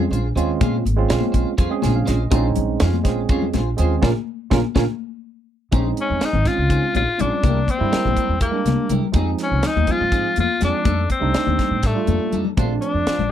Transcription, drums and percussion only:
0.00 low conga
0.13 closed hi-hat
0.37 closed hi-hat
0.61 kick, closed hi-hat, high conga
0.74 low conga
0.87 closed hi-hat
1.10 snare, closed hi-hat, low conga
1.21 high conga, low conga
1.33 kick, closed hi-hat, low conga
1.46 low conga
1.58 kick, closed hi-hat, low conga
1.82 snare, closed hi-hat, high conga
1.94 low conga
2.07 snare, closed hi-hat
2.31 kick, closed hi-hat, high conga
2.44 low conga
2.56 closed hi-hat, low conga
2.80 snare, closed hi-hat, low conga
2.94 high conga, low conga
3.05 kick, snare, closed hi-hat
3.18 low conga
3.29 kick, closed hi-hat, low conga
3.42 low conga
3.53 snare, closed hi-hat, high conga
3.66 low conga
3.78 closed hi-hat
4.03 kick, snare, high conga
4.51 kick, snare, high conga
4.75 kick, snare, high conga
5.72 kick, closed hi-hat, high conga
5.97 closed hi-hat
6.11 low conga
6.21 snare, closed hi-hat
6.35 low conga
6.45 kick, snare, closed hi-hat
6.70 kick, closed hi-hat, low conga
6.84 low conga
6.95 closed hi-hat, high conga
7.19 closed hi-hat, low conga
7.44 kick, closed hi-hat, high conga
7.68 kick, closed hi-hat
7.93 snare, closed hi-hat
8.06 high conga, low conga
8.17 kick, closed hi-hat
8.41 kick, closed hi-hat, low conga
8.55 low conga
8.66 snare, closed hi-hat, high conga
8.89 closed hi-hat, low conga
9.14 kick, closed hi-hat, high conga
9.39 snare, closed hi-hat
9.52 low conga
9.63 snare, closed hi-hat
9.77 high conga, low conga
9.87 kick, closed hi-hat
10.12 kick, closed hi-hat, low conga
10.26 low conga
10.36 closed hi-hat, high conga
10.61 snare, closed hi-hat, low conga
10.85 kick, closed hi-hat, high conga, low conga
11.10 kick, closed hi-hat, low conga
11.34 snare, closed hi-hat, low conga
11.47 high conga, low conga
11.59 kick, snare, closed hi-hat, low conga
11.83 kick, snare, closed hi-hat
12.07 closed hi-hat, high conga
12.20 high conga
12.32 closed hi-hat, low conga
12.45 low conga
12.57 kick, closed hi-hat, high conga
12.82 closed hi-hat
12.95 low conga
13.07 snare, closed hi-hat
13.20 low conga

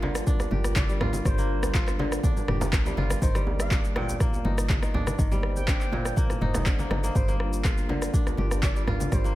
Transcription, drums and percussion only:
0.03 muted conga, djembe slap, high conga, djembe tone
0.15 cross-stick, cabasa
0.27 kick, muted conga, low conga, cabasa
0.40 cross-stick, djembe tone, cabasa
0.51 muted conga, high conga, low conga
0.64 cross-stick, djembe tone, cabasa
0.76 kick, clap, high conga, cabasa
0.89 muted conga, cabasa
1.01 cross-stick, mid tom, djembe slap, djembe tone, low conga, djembe bass
1.13 muted conga, high conga, cabasa
1.25 kick, cross-stick, mid tom, djembe tone, low conga, cabasa
1.38 muted conga, cabasa
1.63 cross-stick, djembe tone, cabasa
1.74 kick, clap, muted conga, cabasa
1.88 cross-stick, clap, djembe tone, cabasa
1.99 muted conga, djembe slap, high conga
2.12 cross-stick, cabasa
2.24 kick, muted conga, high conga, djembe tone, cabasa
2.37 low conga, cabasa
2.48 cross-stick, mid tom, muted conga, high conga, djembe tone
2.61 djembe slap, high conga, low conga, cabasa
2.73 kick, cross-stick, clap, djembe bass, cabasa
2.86 muted conga, djembe slap, djembe tone, high conga, cabasa
2.97 djembe slap, high conga, low conga
3.10 cross-stick, muted conga, djembe tone, cabasa
3.22 kick, mid tom, low conga, cabasa
3.35 cross-stick, muted conga, cabasa
3.47 djembe tone
3.60 cross-stick, cabasa
3.71 kick, clap, muted conga, djembe tone, cabasa
3.84 cabasa
3.96 cross-stick, djembe slap, muted conga, high conga
4.09 djembe tone, cabasa
4.20 kick, cross-stick, muted conga, low conga, cabasa
4.34 djembe tone, cabasa
4.45 muted conga, high conga, low conga
4.58 cross-stick, cabasa
4.70 kick, clap, djembe tone, high conga, cabasa
4.83 cross-stick, muted conga, cabasa
4.94 mid tom, djembe slap, djembe tone, low conga, djembe bass
5.07 cross-stick, muted conga, high conga, cabasa
5.19 kick, mid tom, low conga, cabasa
5.31 muted conga, djembe tone, cabasa
5.43 cross-stick
5.56 djembe tone, cabasa
5.68 kick, cross-stick, clap, muted conga, cabasa
5.81 clap, cabasa
5.92 djembe slap, muted conga, djembe tone, high conga
6.05 cross-stick, cabasa
6.16 kick, muted conga, high conga, djembe tone, cabasa
6.30 cross-stick, low conga, cabasa
6.41 mid tom, muted conga, high conga
6.54 cross-stick, djembe slap, djembe tone, high conga, low conga, cabasa
6.66 kick, clap, djembe bass, cabasa
6.79 djembe slap, muted conga, high conga, djembe tone, cabasa
6.91 cross-stick, djembe slap, high conga, low conga
7.04 muted conga, cabasa
7.15 kick, mid tom, low conga, cabasa
7.28 muted conga, djembe tone, cabasa
7.40 cross-stick
7.53 cabasa
7.64 kick, cross-stick, clap, muted conga, djembe tone, cabasa
7.78 cabasa
7.88 djembe slap, muted conga, djembe tone, high conga
8.02 cross-stick, cabasa
8.14 kick, muted conga, low conga, cabasa
8.27 cross-stick, djembe tone, cabasa
8.38 muted conga, high conga, low conga
8.51 cross-stick, djembe tone, cabasa
8.63 kick, clap, high conga, cabasa
8.76 muted conga, cabasa
8.87 cross-stick, mid tom, djembe slap, djembe tone, low conga, djembe bass
9.00 muted conga, high conga, cabasa
9.12 kick, cross-stick, mid tom, djembe tone, low conga, cabasa
9.24 muted conga, cabasa

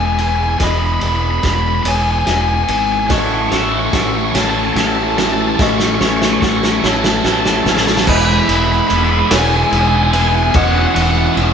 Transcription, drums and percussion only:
0.19 ride
0.60 kick, snare, ride
1.01 ride
1.43 kick, snare, ride
1.85 ride
2.27 snare, ride
2.68 ride
3.10 kick, snare, ride
3.52 snare, ride
3.93 kick, snare, ride
4.35 snare, ride
4.76 snare, ride
5.18 snare, ride
5.59 kick, snare
5.79 snare
6.01 snare
6.22 snare
6.42 kick, snare
6.63 snare
6.84 snare
7.04 snare
7.24 snare
7.45 snare
7.66 snare
7.77 snare
7.87 snare
7.97 snare
8.07 kick, crash
8.49 ride
8.90 ride
9.31 snare, ride
9.73 ride
10.13 ride
10.54 kick, ride
10.96 ride
11.37 ride

